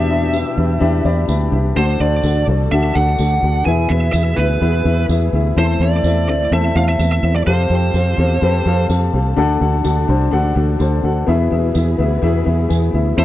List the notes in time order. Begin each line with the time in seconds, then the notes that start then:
Already playing: E2 B2 E3 B3 D4 E4 G4 B4 D5 E5
0.09 D4 G4 B4 E5
0.33 D4 G4 B4 E5, tambourine
0.56 E2 D4 G4 B4 E5
0.80 E2 D4 G4 B4 E5 G5
1.04 E2 D4 G4 B4 D5 B5
1.27 D2 D4 G4 B4 E5 B5, tambourine
1.51 C2 D4 G4 B4 E5
1.76 D2 A2 D3 D4 F#4 A4 C5 F#5
1.99 D2 D4 F#4 A4 C5 D5
2.23 D2 D4 F#4 A4 F#5, tambourine
2.47 C2 D4 F#4 A4 D5
2.71 D2 D4 F#4 A4 E5 F#5
2.95 D2 D4 F#4 A4 F#5
3.19 D2 D4 F#4 A4 F#5, tambourine
3.43 D2 D4 F#4 A4 F#5
3.65 E2 B2 E3 B3 E4 G#4 B4 E5 G#5
3.89 E2 B3 E4 G#4 B4 E5
4.12 E2 B3 E4 G#4 E5, tambourine
4.36 D2 B3 E4 G#4 B4 E5
4.61 E2 B3 E4 G#4 E5
4.84 E2 B3 E4 G#4 E5
5.09 E2 B3 E4 G#4 E5, tambourine
5.33 D2 B3 E4 G#4 E5
5.56 E2 E3 A3 C4 E4 A4 C5 E5
5.80 E2 C4 E4 A4 D5 E5
6.04 E2 C4 E4 A4 E5, tambourine
6.28 D2 C4 E4 A4 D5 E5
6.51 E2 C4 E4 A4 E5
6.75 E2 C4 E4 A4 E5 F5
6.88 E5
6.99 E2 C4 E4 A4 B4, tambourine
7.12 E5
7.22 E2 C4 E4 A4 E5
7.36 D5
7.46 F2 C3 F3 C4 G4 A4 C5 F5
7.70 F2 C4 G4 A4 G5
7.94 F2 C4 G4 A4 F5, tambourine
8.18 E2 C4 G4 A4 F5
8.41 F2 C4 G4 A4 B4
8.65 F2 C4 G4 A4 F5
8.89 F2 C4 G4 A4 F5, tambourine
9.12 C2 C4 G4 A4 F5
9.36 D2 A2 D3 D4 F#4 A4 F#5
9.60 D2 D4 F#4 A4 F#5
9.84 D2 D4 F#4 A4 F#5, tambourine
10.08 C2 D4 F#4 A4 C5
10.31 D2 D4 F#4 A4 F#5
10.55 D2 D4 F#4 A4 F#5
10.79 D2 D4 F#4 A4 C5, tambourine
11.03 D2 D4 F#4 A4 F#5
11.27 E2 B2 E3 B3 E4 G#4 B4 E5
11.50 E2 B3 E4 G#4 E5
11.74 E2 B3 E4 G#4 E5, tambourine
11.98 D2 B3 E4 G#4 E5
12.22 E2 B3 E4 G#4 E5
12.45 E2 B3 E4 G#4 E5
12.69 E2 B3 E4 G#4 E5 G#5, tambourine
12.93 D2 B3 E4 G#4 E5
13.17 E2 E3 A3 C4 E4 A4 C5 E5